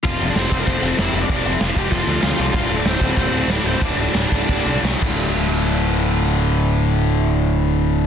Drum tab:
CC |xxxxxxxx|xxxxxxxx|xxxxxxxx|xxxxxxxx|
SD |--o---o-|--o---o-|--o---o-|--o---o-|
BD |o--oo---|o--oo---|o--oo---|o--oo--o|

CC |--------|--------|
SD |--------|--------|
BD |--------|--------|